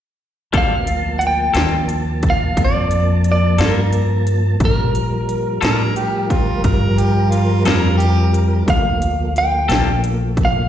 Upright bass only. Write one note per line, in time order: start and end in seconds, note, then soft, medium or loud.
0.54 1.52 D2 medium
1.55 2.54 D#2 medium
2.57 3.56 F2 medium
3.59 4.58 G2 medium
4.60 5.59 A#2 medium
5.63 6.61 A2 medium
6.64 7.63 G2 medium
7.65 8.64 F2 medium
8.68 9.66 D2 medium
9.69 10.68 A#1 medium